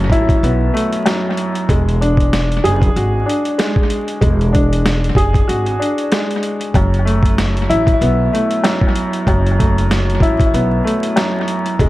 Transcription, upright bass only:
0.10 A1
0.43 B1
1.69 E1
2.64 F#1
2.96 G#1
4.22 E1
5.15 F#1
5.49 G#1
6.75 F#1
7.70 A1
8.01 B1
9.27 F#1
10.21 A1
10.54 B1
11.80 E1

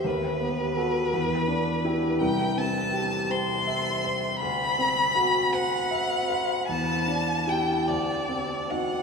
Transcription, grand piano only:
0.04 D#2
0.40 B3
0.77 F#4 A4
1.13 E2
1.48 D4
1.85 E4 G4
2.21 C2
2.57 C4
2.94 G4
3.30 C5
3.67 E5
4.04 C5
4.41 D2
4.78 C4
5.15 F#4
5.53 C5
5.91 E5
6.30 C5
6.69 E2
7.08 D4
7.47 E4 G4
7.87 D2
8.29 C4
8.70 D#4 F#4

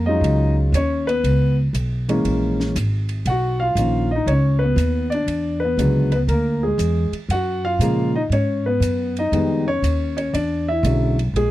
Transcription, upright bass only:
Already playing: F2
0.21 C#2
0.72 D#2
1.24 C#2
1.73 B1
2.24 A#1
2.75 G#1
3.26 B1
3.75 A#1
4.26 C#2
4.76 D#2
5.26 E2
5.77 C#2
6.27 D2
6.78 E2
7.12 muted upright bass stroke
7.29 F#2
7.79 A#2
8.30 G#2
8.80 F#2
9.32 F2
9.82 D#2
10.33 E2
10.83 B1
11.34 A#1

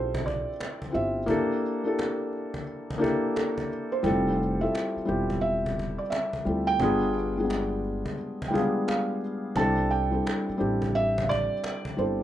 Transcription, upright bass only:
Already playing: B1
0.95 G1
4.04 F1
4.97 muted upright bass stroke
5.09 E1
6.46 D2
6.80 G1
9.56 C2
10.49 muted upright bass stroke
10.61 A1
11.99 G1

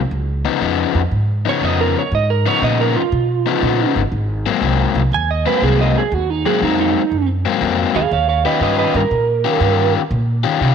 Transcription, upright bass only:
0.11 C#2
0.61 F2
0.94 F2
1.11 G#2
1.61 F2
2.12 G#2
2.62 A#2
3.12 B2
3.62 A#2
3.96 G1
4.12 G#1
4.61 C2
4.95 C2
5.12 D#2
5.61 C2
6.12 D#2
6.62 F2
7.12 F#2
7.61 F2
7.95 D#2
8.11 D#2
8.60 G2
8.94 G2
9.11 A#2
9.60 G2
10.11 A#2
10.61 C3

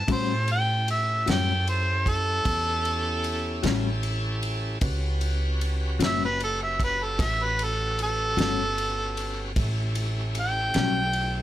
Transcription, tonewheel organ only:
0.07 C#4 E4 G4 A4
4.81 C#4 F#4 G4 B4
9.58 A3 C#4 E4 G4

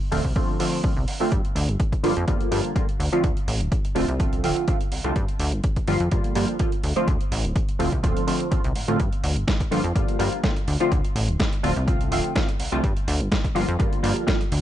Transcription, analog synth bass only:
0.12 D1
0.25 C2
0.97 C2
1.32 G2
1.56 D2
1.68 G1
2.04 G1
2.17 F2
2.28 G2
2.52 G2
3.00 D2
3.24 D2
3.48 A1
3.60 D1
3.96 D1
4.08 C2
4.44 D1
4.92 C2
5.04 C2
5.16 G2
5.39 D2
5.52 G1
5.88 G1
6.00 F2
6.12 G2
6.36 G2
6.84 D2
7.08 D2
7.32 A1
7.44 D1
7.79 D1
7.92 C2
8.04 D1
8.64 C2
8.76 A2
8.88 A2
9.00 G2
9.24 D2
9.36 G1
9.72 G1
9.84 F2
10.19 G2
10.68 D2
10.92 D2
11.16 A1
11.28 D1
11.64 D1
11.76 C2
12.12 D1
12.60 C2
12.73 C2
12.84 G2
13.08 D2
13.20 G1
13.56 G1
13.69 F2
13.80 G2
14.04 G2
14.52 D2

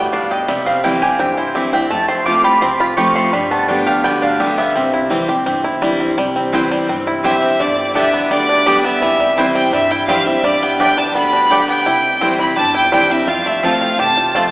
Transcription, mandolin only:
0.13 F5
0.31 D#5
0.48 E5
0.66 F5
0.84 G5
1.02 G#5
1.20 G5
1.38 C5
1.55 E5
1.73 G5
1.91 A5
2.08 C6
2.26 D6
2.44 B5
2.61 C6
2.80 B5
2.97 C#6
3.15 C6
3.33 B5
3.51 A5
3.69 G5
3.87 F5
4.04 G5
4.23 F5
4.40 E5
4.58 E5
6.53 C4 E4 C5 G5
7.24 C4 E4 C5 G5
7.95 B3 G4 D5 G5
8.66 B3 G4 D5 G5
9.37 C4 E4 C5 G5
10.08 C4 E4 C5 G5
10.79 B3 G4 D5 G5
11.51 B3 G4 D5 G5
12.21 C4 E4 C5 G5
12.92 C4 E4 C5 G5
13.63 C4 F4 C5 A5
14.34 C4 F4 C5 A5

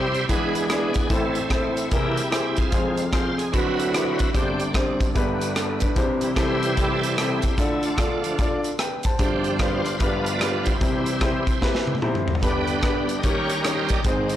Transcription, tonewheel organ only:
Already playing: C3 G3 C4 E4 G4 C5
0.29 E3 G#3 D4 G#4 B4
0.70 B3 D4 G#4
1.10 A2 E3 A3 C4 E4
1.52 A3 C4 E4
1.92 C3 E3 A#3 E4 G4
2.59 C4 F4 G#4
2.72 F3 G#3 C4
3.13 C5
3.39 G#4
3.52 D3 F#3 C4 E4 F#4 B4
4.33 G2 D3 C4 D4 G4
5.14 G2 D3 B3
6.22 C3 E3 G3
6.36 E4 G4 C5
6.77 C4 E4 A4
7.18 C3 E3 G3 C4 E4 G4
7.59 A3 E4
7.85 A3 D4 F4
8.24 D3 F3 A3
9.19 G2 F3 C4 D4 G4
9.59 F4 C5
9.95 B4 C5
9.99 G2 F3 B3 D4 F4
10.39 D5
10.64 E4 G4 C5
10.81 C3 E3 G3
12.43 G2 D3 B3 D4 G4 B4
12.79 C5
12.83 D4 G4 B4
13.19 D#5
13.23 D#3 G3 C#4 G4 A#4 C#5
13.64 C5
13.89 D#4 D5
14.05 G#2 D#3 C4

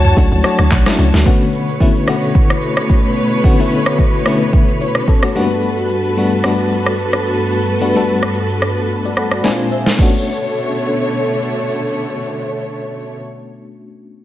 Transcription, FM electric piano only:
Already playing: F#3 A3 C#4 D4 E4 F#4 C#5
0.17 F#3 A3 C#4 D4 F#4
0.44 F#3 A3 D4 F#4 C#5
0.86 F#3 A3 C#4 D4 E4
1.26 D3 A3 B3 C#4 F#4
1.80 D3 A3 B3 C#4 E4
2.08 D3 A3 B3 C#4 F#4
3.44 D3 A3 B3 C#4 F#4
3.59 D3 A3 B3 C#4 E4
4.26 D3 A3 B3 C#4 E4
4.81 E4 C#5
5.09 C#4 A4
5.24 A3 F#4
5.35 G3 A3 A#3 D4 F#4
5.42 B3
6.17 G3 A3 B3 D4 F#4
6.44 G3 A3 B3 D4 F#4
7.80 G3 A3 B3 D4 F#4
7.95 G3 A3 B3 D4 A4
9.05 F#4 D5
9.17 A4 F#5 B5
9.32 F#4 D5
9.44 G#3 A#3 C4 D4 E4 G#5
9.52 F4
9.72 E5
9.96 A3 B3 C#4
10.01 D4 F#4

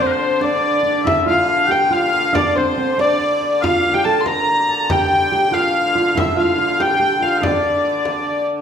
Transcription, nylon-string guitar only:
Already playing: C4
0.41 D4
0.83 D4
1.05 E4
1.26 F4
1.69 G4
1.91 F4
2.33 D4
2.57 C4
2.78 C4
2.98 D4
3.64 F4
3.95 G4
4.06 A4
4.26 A#4
4.90 G4
5.32 G4
5.52 F4
5.95 F4
6.15 E4
6.37 F4
6.58 F4
6.80 G4
7.00 G4
7.21 F4
7.42 D4

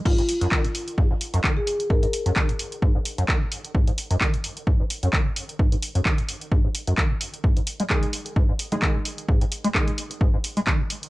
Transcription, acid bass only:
0.06 G#2
0.18 G#2
0.41 F#2
0.52 D#3
0.65 G#2
0.98 G#2
1.11 G#2
1.34 F#2
1.44 D#3
1.57 G#2
1.90 G#2
2.03 G#2
2.26 F#2
2.36 D#3
2.49 G#2
2.83 G#2
2.95 G#2
3.18 F#2
3.29 D#3
3.41 G#2
3.75 G#2
3.88 G#2
4.11 F#2
4.21 D#3
4.34 G#2
4.67 G#2
4.80 G#2
5.03 F#2
5.13 D#3
5.26 G#2
5.59 G#2
5.72 G#2
5.95 F#2
6.06 D#3
6.18 G#2
6.52 G#2
6.65 G#2
6.88 F#2
6.98 D#3
7.11 G#2
7.44 G#2
7.57 G#2
7.80 G#3
7.90 D#3
8.03 G#2
8.36 G#2
8.49 G#2
8.72 G#3
8.82 D#3
8.95 G#2
9.29 G#2
9.41 G#2
9.64 G#3
9.75 D#3
9.88 G#2
10.21 G#2
10.34 G#2
10.57 G#3
10.67 D#3
10.80 G#2

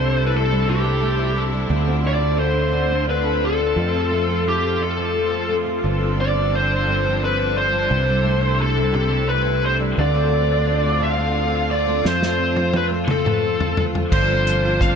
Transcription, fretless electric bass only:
Already playing: C2
1.70 D2
3.76 F2
5.84 G1
7.91 C2
9.98 D2
12.05 F2
14.12 G1

